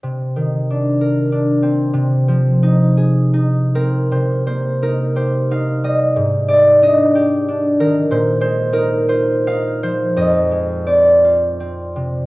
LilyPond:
\new Staff \with { instrumentName = "Harp" } { \time 3/4 \key c \minor \tempo 4 = 88 << { r2. | r2 r8 bes'8 | c''8 c''8 bes'8 c''8 f''8 ees''8~ | ees''8 d''8 ees''4. bes'8 |
c''8 c''8 bes'8 c''8 f''8 c''8 | ees''4 d''2 | } \\ { c8 ees8 d'8 bes'8 d'8 c'8 | c8 f8 ees'8 aes'8 ees'8 c'8 | c8 bes8 ees'8 g'8 ees'8 g8 | aes,8 aes8 d'8 g'8 d'8 ees8 |
bes,8 aes8 ees'8 f'8 ees'8 f8 | f,8 aes8 c'8 f'8 c'8 c8 | } >> }